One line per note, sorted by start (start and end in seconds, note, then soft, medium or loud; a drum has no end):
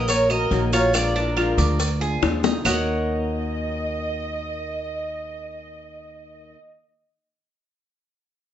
0.00 0.47 A#1 medium
0.00 0.29 A#4 medium
0.08 0.28 A#4 medium
0.08 0.30 C#5 loud
0.08 muted steel-string acoustic guitar stroke medium
0.08 cowbell medium
0.08 maracas loud
0.29 0.50 A#3 soft
0.29 0.51 C#4 soft
0.29 0.50 F#4 soft
0.29 0.70 A#4 loud
0.29 0.71 D#5 medium
0.29 0.73 D#5 medium
0.29 claves medium
0.29 maracas soft
0.50 1.52 A#1 medium
0.50 0.71 D#3 medium
0.50 0.72 A#3 medium
0.50 0.72 C#4 medium
0.50 0.71 F#4 medium
0.50 cowbell medium
0.50 maracas soft
0.72 0.94 A#3 soft
0.72 0.93 C#4 soft
0.72 1.14 F4 medium
0.72 0.93 F#4 soft
0.72 0.93 A#4 medium
0.72 0.94 C#5 loud
0.72 cowbell medium
0.72 maracas medium
0.93 1.14 F3 medium
0.93 1.15 G#3 medium
0.93 1.15 D4 medium
0.93 1.14 F4 medium
0.93 2.18 A#4 medium
0.93 2.18 D5 loud
0.93 cowbell loud
0.93 claves medium
0.93 maracas loud
1.15 1.36 G#3 soft
1.15 1.36 D4 medium
1.15 1.36 F4 soft
1.15 maracas soft
1.36 1.78 F3 medium
1.36 1.79 G#3 medium
1.36 1.79 D4 medium
1.36 1.57 F4 medium
1.36 1.79 F4 loud
1.36 cowbell medium
1.36 claves medium
1.36 maracas soft
1.58 2.18 D2 loud
1.58 2.00 D5 medium
1.58 cowbell medium
1.58 maracas medium
1.80 muted steel-string acoustic guitar stroke medium
1.80 cowbell loud
1.80 maracas loud
2.00 2.22 G#3 soft
2.00 2.22 D4 medium
2.00 2.21 F4 medium
2.00 2.42 G#4 medium
2.00 maracas soft
2.22 2.60 D#2 medium
2.22 2.43 F3 medium
2.22 2.43 G#3 medium
2.22 2.43 D4 medium
2.22 2.42 F4 medium
2.22 cowbell medium
2.22 high bongo loud
2.22 claves medium
2.22 maracas soft
2.43 2.65 G#3 soft
2.43 2.64 D4 soft
2.43 2.64 D#4 loud
2.43 2.64 F4 soft
2.43 low bongo loud
2.43 maracas medium
2.64 6.53 D#2 medium
2.64 6.56 D#3 medium
2.64 6.57 A#3 medium
2.64 6.58 C#4 medium
2.64 6.53 D#4 medium
2.64 6.59 F#4 medium
2.64 6.53 A#4 medium
2.64 6.54 C#5 medium
2.64 6.53 D#5 medium
2.64 6.54 F#5 medium
2.64 low bongo medium
2.64 claves loud
2.64 maracas loud